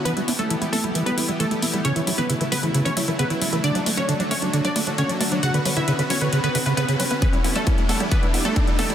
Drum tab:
HH |xxoxxxoxxxoxxxox|xxo-xxoxxxoxxxox|xxoxxxoxxxoxxxox|xxoxxxoxxxoxxxox|
T2 |----------------|----------------|----------------|----------------|
BD |----------------|----------------|----------------|----------------|

HH |xxoxxxoxxxoxxxox|
T2 |--o----o------o-|
BD |o---o---o---o---|